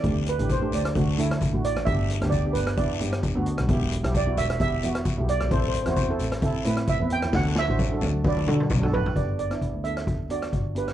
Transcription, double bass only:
X:1
M:4/4
L:1/16
Q:"Swing 16ths" 1/4=132
K:G
V:1 name="Double bass" clef=bass
D,,3 A,,,3 D,,2 D,,2 D,3 A,,,2 A,,, | G,,,3 D,,3 G,,,4 G,,3 D,,2 B,,, | E,,,3 B,,,3 E,,,4 E,,3 B,,,2 B,,, | A,,,3 E,,3 A,,,4 A,,3 E,,2 E,, |
D,,3 A,,,3 D,,4 D,2 B,,,2 A,,,2 | G,,,4- G,,, D,, D,,6 G,,,4 |]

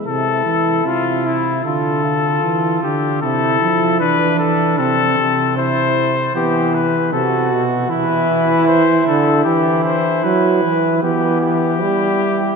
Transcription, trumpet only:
X:1
M:4/4
L:1/8
Q:1/4=76
K:Am
V:1 name="Trumpet"
A2 F E A3 G | A2 B A A2 c2 | G B A z B2 c A | G c B2 G G3 |]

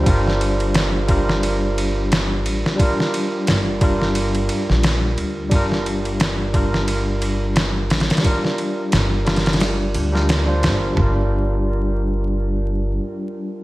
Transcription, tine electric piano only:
X:1
M:4/4
L:1/16
Q:"Swing 16ths" 1/4=88
K:Gm
V:1 name="Tine electric piano"
[G,DFB]6 [G,DFB] z8 z | [G,DFB]6 [G,DFB] z8 z | [G,DFB]6 [G,DFB] z8 z | [G,DFB]6 [G,DFB] z4 [G,DFB]2 [G,DFc]3 |
[G,DFB]16 |]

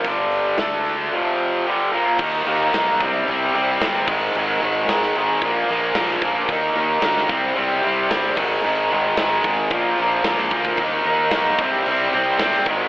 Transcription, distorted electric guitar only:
X:1
M:4/4
L:1/8
Q:1/4=112
K:Cm
V:1 name="Distorted electric guitar" clef=bass
[G,,D,G,]2 [D,=A,D]2 [F,,C,F,]2 [G,,D,G,] [B,,F,B,] | [E,B,E] [E,B,E] [E,B,E] [C,G,C] [C,G,C] [C,G,C] [C,G,C] [A,,E,A,] | [A,,E,A,] [A,,E,A,] [A,,E,A,] [A,,E,A,] [B,,F,B,] [B,,F,B,] [B,,F,B,] [B,,F,B,] | [E,B,E] [E,B,E] [E,B,E] [C,G,C] [C,G,C] [C,G,C] [C,G,C] [A,,E,A,] |
[A,,E,A,] [A,,E,A,] [A,,E,A,] [A,,E,A,] [B,,F,B,] [B,,F,B,] [B,,F,B,] [B,,F,B,] | [E,B,E] [E,B,E] [E,B,E] [C,G,C] [C,G,C] [C,G,C] [C,G,C] [A,,E,A,] |]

